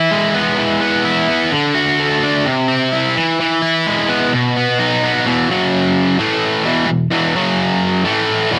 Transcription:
distorted electric guitar
Already playing: E3 E4
0.11 G#3
0.34 B3
0.58 E3
0.81 B3
1.05 E4
1.28 B3
1.52 D3
1.74 F#4
2.00 A3
2.23 D4
2.45 C3
2.68 C4
2.92 E4
3.16 E3
3.40 E3
3.62 E4
3.87 G#3
4.09 B3
4.33 B2
4.57 B3
4.79 D#4
5.03 B3
5.26 E2 B2 E3
5.50 F#2 C#3 F#3
6.19 A2 E3 A3
6.65 E2 B2 E3
6.87 E2 B2
7.11 E2 B2 E3
7.35 F#2 C#3 F#3
8.04 A2 E3 A3
8.52 E2 B2 E3

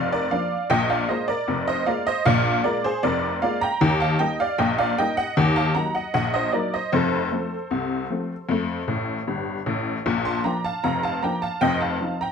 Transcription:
honky-tonk piano
Already playing: F1 F2 D5 F5
0.12 A#4 D5
0.31 F3 A#3 D4 D5 F5
0.70 A#1 A#2 D#5 G5
0.90 D5 F5
1.09 G#3 A#3 F4 C5 D#5
1.28 A#4 D5
1.48 F1 F2
1.68 C5 D#5
1.86 G#3 A#3 F4 D5 F5
2.07 C5 D#5
2.25 A#1 A#2 D5 F5
2.64 G#3 A#3 F4 A#4 D5
2.84 G#4 C5
3.03 F1 F2 A#4 D5
3.42 G#3 A#3 F4 D5 F5
3.61 G5 A#5
3.81 D#2 D#3
4.00 F5 A5
4.19 G3 A#3 D#4 D#5 G5
4.40 D5 F5
4.58 A#1 A#2 D#5 G5
4.78 D5 F5
4.98 G3 A#3 D#4 D#5 G5
5.17 D#5 F#5
5.37 D#2 D#3
5.56 F5 A5
5.75 F#3 A#3 D#4 F#5 A#5
5.95 D#5 F#5
6.14 A#1 A#2 D#5 F#5
6.34 C5 D#5
6.53 F#3 A#3 D#4 A#4 D5
6.74 C5 D#5
6.92 F1 F2 A4 C5
7.32 F3 A3 C4
7.71 C2 C3
8.10 F3 A3 C4
8.49 F2 A3
8.88 A1 A2
9.27 G1 G2
9.66 A1 A2
10.06 A#1 A#2
10.25 A5 C6
10.44 F3 A#3 D4 G5 A#5
10.64 F5 A5
10.84 F1 F2 F5 A#5
11.03 F5 A5
11.23 F3 A#3 D4 G5 A#5
11.42 F5 A5
11.61 F1 F2 D#5 G5
11.81 F5 A5
12.01 F3 C4 D#4
12.21 G5 A#5

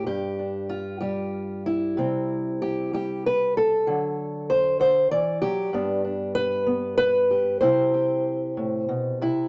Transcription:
steel-string acoustic guitar
0.06 G2 G4
0.39 D4
0.69 F4
1.01 G3 G4
1.66 E4
1.97 C3 G3 C4
2.62 G4
2.93 G3 G4
3.26 B4
3.57 A4
3.87 D3 F#3
4.50 C5
4.80 D3 C5
5.11 E3 D5
5.42 F#3 G4
5.73 G2 B3 D4
6.05 D4
6.35 B4
6.66 B3
6.98 B4
7.31 G4
7.61 C3 E4 G4 C5
7.94 G4
8.57 A2
8.89 B2
9.21 C3 E4

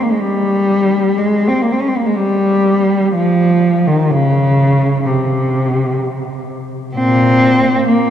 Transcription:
cello
0.03 A#3
0.11 G#3
0.20 G3
1.18 G#3
1.48 C4
1.62 A#3
1.72 C4
1.81 C#4
1.88 C4
1.97 A#3
2.06 G#3
2.16 G3
3.14 F3
3.87 D#3
4.11 C#3
5.06 C3
6.95 A#2 C4
7.89 A#3

